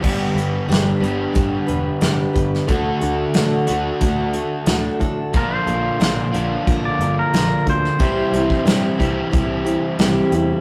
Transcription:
<<
  \new Staff \with { instrumentName = "Pedal steel guitar" } { \time 4/4 \key g \major \tempo 4 = 90 r1 | r1 | bes'16 c''2 d''8 bes'8. c''8~ | c''4. r2 r8 | }
  \new Staff \with { instrumentName = "Tonewheel organ" } { \time 4/4 \key g \major <d' g' b'>1 | <d' fis' a'>1 | <d' f' bes'>1 | <e' g' c''>1 | }
  \new Staff \with { instrumentName = "Steel-string acoustic guitar" } { \time 4/4 \key g \major <g, d g d' g' b'>8 <g d' g' b'>8 <g, d g d' g' b'>8 <g d' g' b'>8 <g d' g' b'>8 <g d' g' b'>8 <g, d g d' g' b'>8 <g d' g' b'>8 | <d a d' fis' a'>8 <d' fis' a'>8 <d a d' fis' a'>8 <d' fis' a'>8 <a d' fis' a'>8 <d' fis' a'>8 <d a d' fis' a'>8 <d' fis' a'>8 | <bes, d f bes d' bes'>8 <f bes d' bes'>8 <bes, d f bes d' bes'>8 <f bes d' bes'>8 <f bes d' bes'>8 <f bes d' bes'>8 <bes, d f bes d' bes'>8 <f bes d' bes'>8 | <c g c' e' g'>8 <c' e' g'>8 <c g c' e' g'>8 <c' e' g'>8 <g c' e' g'>8 <c' e' g'>8 <c g c' e' g'>8 <c' e' g'>8 | }
  \new Staff \with { instrumentName = "Overdriven electric guitar" } { \time 4/4 \key g \major <g, d g b d' g'>4. <g, d g b d' g'>2~ <g, d g b d' g'>8 | <d a d' fis'>4. <d a d' fis'>2~ <d a d' fis'>8 | <bes, d bes d' f'>4. <bes, d bes d' f'>2~ <bes, d bes d' f'>8 | <c e g c' e'>4. <c e g c' e'>2~ <c e g c' e'>8 | }
  \new Staff \with { instrumentName = "Picked electric bass" } { \clef bass \time 4/4 \key g \major g,,8 g,,8 g,,8 g,,8 g,,8 e,,8 g,,8 g,,8 | d,8 d,8 a,8 d,8 d,4 d,8 a,8 | bes,,8 bes,,8 bes,,8 bes,,8 bes,,8 g,,8 bes,,8 d,8 | c,8 c,8 g,8 c,8 c,4 c,8 e,8 | }
  \new DrumStaff \with { instrumentName = "Drums" } \drummode { \time 4/4 <cymc bd>8 hh8 <hh sn>8 hh8 <hh bd>8 hh8 <hh sn>8 <hh bd>16 sn16 | <hh bd>8 hh8 <hh sn>8 hh8 <hh bd>8 hh8 <hh sn>8 <hh bd>8 | <hh bd>8 hh8 <hh sn>8 hh8 <hh bd>8 hh8 <hh sn>8 <hh bd>16 sn16 | <hh bd>8 hh16 bd16 <hh sn>8 <hh bd>8 <hh bd>8 hh8 <hh sn>8 hh8 | }
>>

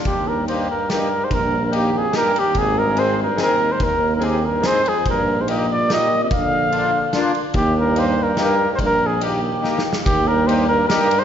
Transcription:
<<
  \new Staff \with { instrumentName = "Flugelhorn" } { \time 3/4 \key ees \major \tempo 4 = 144 g'8 bes'8 c''8 bes'8 bes'8. c''16 | bes'8. bes'16 g'8 aes'8 bes'8 g'8 | aes'8 bes'8 c''8 bes'8 bes'8. c''16 | bes'8. bes'16 g'8 bes'8 c''8 aes'8 |
bes'8. c''16 ees''8 d''8 ees''8. ees''16 | f''2 r4 | g'8 bes'8 c''8 bes'8 bes'8. c''16 | bes'8 aes'8 g'4. r8 |
g'8 bes'8 c''8 bes'8 bes'8. c''16 | }
  \new Staff \with { instrumentName = "Accordion" } { \time 3/4 \key ees \major r4 <bes ees' g'>8 r8 <bes ees' g'>8 r8 | r4 <bes ees' g'>8 r8 <bes ees' g'>8 r8 | r4 <c' ees' aes'>8 r8 <c' ees' aes'>8 r8 | r4 <c' ees' aes'>8 r8 <c' ees' aes'>8 r8 |
r4 <bes ees' g'>8 r8 <bes ees' g'>8 r8 | r4 <bes d' f'>8 r8 <bes d' f'>8 r8 | r4 <bes ees' g'>8 r8 <bes ees' g'>8 r8 | r4 <bes ees' g'>8 r8 <bes ees' g'>8 r8 |
r4 <bes ees' g'>8 r8 <bes ees' g'>8 r8 | }
  \new Staff \with { instrumentName = "Euphonium" } { \clef bass \time 3/4 \key ees \major ees,8 g,8 g,8 g,8 g,8. aes,16 | g,8. g,16 ees,8 f,8 g,8 ees,8 | ees,8 g,8 aes,8 g,8 ees,8. aes,16 | ees,8. g,16 ees,8 g,8 aes,8 f,8 |
g,8. aes,16 bes,8 bes,8 bes,8. c16 | d2 r4 | ees,8 g,8 g,8 g,8 g,8. aes,16 | g,8 f,8 ees,4. r8 |
ees,8 g,8 g,8 g,8 g,8. aes,16 | }
  \new Staff \with { instrumentName = "Tuba" } { \clef bass \time 3/4 \key ees \major ees,2. | bes,,2. | aes,,2. | ees,2. |
bes,,2. | bes,,2. | ees,2. | bes,,2. |
ees,2. | }
  \new DrumStaff \with { instrumentName = "Drums" } \drummode { \time 3/4 <bd cymr>4 cymr4 <cymr sn>4 | <bd cymr>4 cymr4 <cymr sn>8 cymr8 | <bd cymr>4 cymr4 <cymr sn>4 | <bd cymr>4 cymr4 <cymr sn>8 cymr8 |
<bd cymr>4 cymr4 <cymr sn>4 | <bd cymr>4 cymr4 <cymr sn>8 cymr8 | <bd cymr>4 cymr4 <cymr sn>4 | <bd cymr>4 cymr4 \tuplet 3/2 { sn8 sn8 sn8 } |
<bd cymr>4 cymr4 <cymr sn>8 cymr8 | }
>>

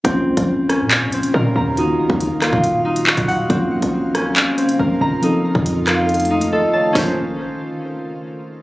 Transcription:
<<
  \new Staff \with { instrumentName = "Harp" } { \time 4/4 \key bes \minor \tempo 4 = 139 c'4. des'4 c'8 bes'8 bes''8 | ees'4. f'4 ees'8 ges'8 ges''8 | c'4. des'4 c'8 bes'8 bes''8 | ees'4. f'4 ees'8 a'8 a''8 |
<des' bes' c''>8 r2. r8 | }
  \new Staff \with { instrumentName = "Synth keys" } { \time 4/4 \key bes \minor << { r1 | r1 | r1 | r2 r8 f''8 ees''8 des''8 |
r1 | } \\ { <bes des' f' c''>1 | <ees ees' f' ges'>1 | <bes des' f' c''>2~ <bes des' f' c''>8 <bes des' f' c''>4. | <f c' ees' a'>1 |
<bes f' c'' des''>8 r2. r8 | } >> }
  \new Staff \with { instrumentName = "Ambient pad" } { \time 4/4 \key bes \minor <des bes f'>1 | <ees ges f''>1 | <des bes f'>1 | <ees a f'>1 |
r1 | }
  \new Staff \with { instrumentName = "808-style bass" } { \clef bass \time 4/4 \key bes \minor bes,,8 des,16 bes,,4 bes,8~ bes,32 bes,,8~ bes,,32 bes,8 ees,8~ | ees,8 ges,,16 ees,8 r8 ees,,4. ees,,8. | bes,,8 c,16 bes,,4~ bes,,16 r4 bes,,8 f,,8~ | f,,16 r8 f,2 a,,16 r4 |
bes,,4 r2. | }
  \new DrumStaff \with { instrumentName = "Drums" } \drummode { \time 4/4 <hh bd>8. <hh bd>16 r8 <hh ss>8 <hc hh>8 hh16 hh16 r4 | hh8. bd16 hh8 <hc hh ss>16 bd16 hh8. hh16 hc16 <hh bd>16 hho8 | <hh bd>8. <hh bd>16 r8 <hh ss>8 <hc hh>8 hh16 hh16 r4 | hh8. bd16 hh8 <hc hh ss>8 hh32 hh32 hh32 hh16. hh16 r4 |
<hho sn>4 r4 r4 r4 | }
>>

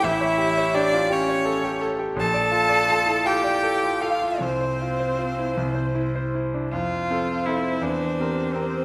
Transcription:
<<
  \new Staff \with { instrumentName = "Violin" } { \time 6/8 \key f \major \tempo 4. = 55 e''4 d''8 cis''4 r8 | a''4. g''4 f''8 | c''2~ c''8 r8 | c''2. | }
  \new Staff \with { instrumentName = "Grand piano" } { \time 6/8 \key f \major a,,16 cis''16 g'16 cis''16 g'16 f'16 g'16 cis''16 a'16 g'16 a'16 g'16 | bes,,16 d''16 f'16 d''16 f'16 e'16 f'16 d''16 a'16 f'16 a'16 f'16 | c,16 c''16 f'16 c''16 f'16 e'16 c,16 c''16 e'16 c''16 e'16 d'16 | f,8 <c' f' a'>8 <c' f' a'>8 e,8 <c' g' bes'>8 <c' g' bes'>8 | }
  \new Staff \with { instrumentName = "Cello" } { \time 6/8 \key f \major e'4 d'8 cis'4 r8 | a'4. g'4 f'8 | c'2~ c'8 r8 | f'4 e'8 d'4 c'8 | }
>>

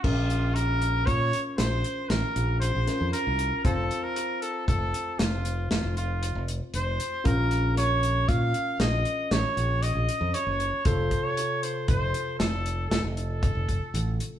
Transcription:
<<
  \new Staff \with { instrumentName = "Trumpet" } { \time 7/4 \key bes \minor \tempo 4 = 117 f'4 bes'4 des''4 c''4 bes'4 c''4 bes'4 | a'8. bes'8. a'8 a'4 f'4 f'8 f'4 r8 c''4 | bes'4 des''4 f''4 ees''4 des''4 ees''4 des''4 | c''8. des''8. c''8 c''4 a'4 a'8 a'2 r8 | }
  \new Staff \with { instrumentName = "Tine electric piano" } { \time 7/4 \key bes \minor <des' f' bes'>1~ <des' f' bes'>4. <des' f' bes'>4. | <c' f' c''>1.~ <c' f' c''>4 | <des' f' bes'>1.~ <des' f' bes'>4 | <c f' a'>1.~ <c f' a'>4 | }
  \new Staff \with { instrumentName = "Fingered electric bass" } { \clef bass \time 7/4 \key bes \minor bes,,2 bes,8 r8 bes,,8 r8 a,,16 r16 bes,,8. bes,,16 r16 f,16 r16 c,8 r16 | f,,8 r4. f,,8 r8 f,,4 f,,16 f,,4 f,,8 r16 f,,8 r8 | bes,,2 bes,8 r8 bes,,8 r8 a,,16 r16 bes,,8. bes,,16 r16 f,16 r16 ges,,8 r16 | f,,8 r4. f,,8 r8 f,,4 f,,16 f,,4 f,,8 r16 a,,8 r8 | }
  \new DrumStaff \with { instrumentName = "Drums" } \drummode { \time 7/4 <cymc bd>8 hh8 hh8 hh8 <hh bd>8 hh8 <hh sn>8 hh8 <hh sn>8 hh8 hh8 <hh sn>8 hh8 hh8 | <hh bd>8 hh8 hh8 hh8 <hh bd>8 hh8 <hh sn>8 hh8 <hh sn>8 hh8 hh8 hh8 hh8 hh8 | <hh bd>8 hh8 <hh sn>8 hh8 <hh bd>8 hh8 <hh sn>8 hh8 <hh sn>8 hh8 hh8 hh8 hh8 hh8 | <hh bd>8 <hh bd>8 hh8 hh8 <hh bd>8 hh8 <hh sn>8 hh8 <hh sn>8 hh8 <hh bd>8 <hh bd>8 hh8 hh8 | }
>>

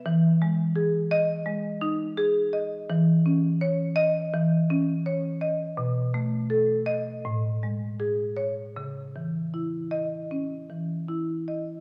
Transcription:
\new Staff \with { instrumentName = "Marimba" } { \time 4/4 \key cis \minor \tempo 4 = 82 << { r4. dis''4 r4. | r4. dis''4 r4. | r4. dis''8 r4. cis''8 | r4. dis''4 r4. | } \\ { e8 gis8 gis'4 gis8 dis'8 gis'8 dis''8 | e8 cis'8 cis''4 e8 cis'8 cis''8 dis''8 | b,8 a8 a'4 a,8 gis8 gis'4 | cis8 e8 e'4 cis'8 e8 e'8 dis''8 | } >> }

